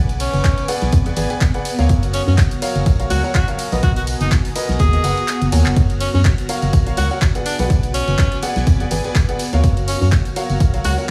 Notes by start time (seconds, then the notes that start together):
Already playing: B1 B3 G#4 B4 D5 F#5 G#5 D6
0.09 closed hi-hat, tambourine
0.20 C#4, closed hi-hat, open hi-hat, ride, tambourine
0.33 F#1, closed hi-hat, tambourine
0.44 kick, snare, clap, closed hi-hat, tambourine
0.58 closed hi-hat, tambourine
0.68 B3 G#4 B4 D5 F#5, closed hi-hat, open hi-hat, ride, tambourine
0.81 B1, snare, closed hi-hat, tambourine
0.92 F2, kick, closed hi-hat, tambourine
1.06 B3 G#4 B4 D5 F#5, closed hi-hat, tambourine
1.16 G#1 B3 G#4 B4 D5 G#5, closed hi-hat, open hi-hat, ride, tambourine
1.30 B3 G#4 B4 D5 G#5, closed hi-hat, tambourine
1.40 kick, snare, clap, closed hi-hat, tambourine
1.54 B3 G#4 B4 D5 F#5, closed hi-hat, tambourine
1.65 closed hi-hat, open hi-hat, ride, tambourine
1.79 D2 F#3 F#4 A#4 C#5 F5, snare, closed hi-hat, tambourine
1.89 F#1 F#4 F6 A#6, kick, closed hi-hat, tambourine
2.03 closed hi-hat, tambourine
2.10 C#4 G#5, closed hi-hat, open hi-hat, ride, tambourine
2.27 F#2 C#4, tambourine
2.38 kick, snare, clap, closed hi-hat, tambourine
2.51 closed hi-hat, tambourine
2.62 F#3 F#4 A#4 C#5 F5, closed hi-hat, open hi-hat, ride, tambourine
2.75 F#1, closed hi-hat, tambourine
2.86 A#1, kick, closed hi-hat, tambourine
2.99 F#3 F#4 A#4 C#5 F5, closed hi-hat, tambourine
3.10 C#2 F#3 F#4 A#4 C#5 F#5, closed hi-hat, open hi-hat, ride, tambourine
3.24 F#3 F#4 A#4 C#5 F#5, tambourine
3.34 F#4, kick, snare, clap, closed hi-hat, tambourine
3.48 F#3 F#4 A#4 C#5 F5, closed hi-hat, tambourine
3.58 closed hi-hat, open hi-hat, ride, tambourine
3.72 A#1 B3 F#4 A#4 B4 D#5, open hi-hat, tambourine
3.83 B1 B3 F#4 A#5 D#6, kick, closed hi-hat, tambourine
3.96 F#4, closed hi-hat, tambourine
4.07 open hi-hat, ride, tambourine
4.20 F#1 D#4, closed hi-hat, tambourine
4.31 kick, snare, clap, closed hi-hat, tambourine
4.45 open hi-hat, tambourine
4.56 B3 F#4 A#4 B4 D#5, closed hi-hat, open hi-hat, ride, tambourine
4.69 B1, snare, closed hi-hat, tambourine
4.79 D#2 G#4, kick, closed hi-hat, tambourine, swell
4.93 B3 F#4 A#4 B4 D#5, closed hi-hat, tambourine
5.04 F#1 B3 F#4 A#4 B4 F#5, closed hi-hat, open hi-hat, ride, tambourine
5.17 closed hi-hat, tambourine
5.28 snare, clap, closed hi-hat, tambourine
5.41 F#1, closed hi-hat, tambourine
5.52 D#2 F#3 F#4 A#4 C#5 G#5, closed hi-hat, open hi-hat, ride, tambourine
5.66 F#1, snare, clap, closed hi-hat, tambourine
5.76 F#1 F#4 F6 A#6, kick, closed hi-hat, tambourine
5.90 closed hi-hat, tambourine
6.00 C#4, closed hi-hat, open hi-hat, ride, tambourine
6.14 F#2 C#4, tambourine
6.24 kick, snare, clap, closed hi-hat, tambourine
6.38 closed hi-hat, tambourine
6.49 F#3 F#4 A#4 C#5 F5, closed hi-hat, open hi-hat, ride, tambourine
6.53 G#5
6.62 F#1, closed hi-hat, tambourine
6.73 A#1, kick, closed hi-hat, tambourine
6.87 F#3 F#4 A#4 C#5 F5, closed hi-hat, tambourine
6.97 C#2 F#3 F#4 A#4 C#5 F#5, closed hi-hat, open hi-hat, ride, tambourine
7.11 F#3 F#4 A#4 C#5 F#5, tambourine
7.21 kick, snare, clap, closed hi-hat, tambourine
7.35 B3 G#4 B4 D5 F#5, closed hi-hat, tambourine
7.46 B3 D4 B4 G#5 D6, closed hi-hat, open hi-hat, ride, tambourine
7.59 B1 B3 G#4 B4 D5 F#5, open hi-hat, tambourine
7.70 B1, kick, closed hi-hat, tambourine
7.83 closed hi-hat, tambourine
7.94 C#4, closed hi-hat, open hi-hat, ride, tambourine
8.08 F#1, closed hi-hat, tambourine
8.18 kick, snare, clap, closed hi-hat, tambourine
8.32 closed hi-hat, tambourine
8.43 B3 G#4 B4 D5 F#5, closed hi-hat, open hi-hat, ride, tambourine
8.56 B1, snare, closed hi-hat, tambourine
8.67 F2, kick, closed hi-hat, tambourine
8.80 B3 G#4 B4 D5 F#5, closed hi-hat, tambourine
8.91 G#1 B3 G#4 B4 D5 G#5, closed hi-hat, open hi-hat, ride, tambourine
9.04 B3 G#4 B4 D5 G#5, closed hi-hat, tambourine
9.15 kick, snare, clap, closed hi-hat, tambourine
9.29 B3 G#4 B4 D5 F#5, closed hi-hat, tambourine
9.39 closed hi-hat, open hi-hat, ride, tambourine
9.53 D2 F#3 F#4 A#4 C#5 F5, snare, closed hi-hat, tambourine
9.63 F#1 F#4 F6 A#6, kick, closed hi-hat, tambourine
9.77 closed hi-hat, tambourine
9.88 C#4, closed hi-hat, open hi-hat, ride, tambourine
10.01 F#2 C#4, tambourine
10.12 kick, snare, clap, closed hi-hat, tambourine
10.25 closed hi-hat, tambourine
10.36 F#3 F#4 A#4 C#5 F5 G#5, closed hi-hat, open hi-hat, ride, tambourine
10.50 F#1, closed hi-hat, tambourine
10.60 A#1, kick, closed hi-hat, tambourine
10.74 F#3 F#4 A#4 C#5 F5, closed hi-hat, tambourine
10.84 C#2 F#3 F#4 A#4 C#5 F#5, closed hi-hat, open hi-hat, ride, tambourine
10.98 F#3 F#4 A#4 C#5 F#5, tambourine